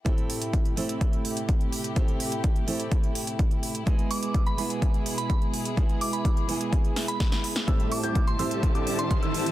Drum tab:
HH |xxoxxxoxxxoxxxox|xxoxxxoxxxoxxxox|xxoxxxoxxxoxxxox|xxoxxxoxxxoxxxox|
SD |----------------|----------------|----------------|----------o-oo-o|
BD |o---o---o---o---|o---o---o---o---|o---o---o---o---|o---o---o---o---|

HH |xxoxxxoxxxoxxxox|
SD |----------------|
BD |o---o---o---o---|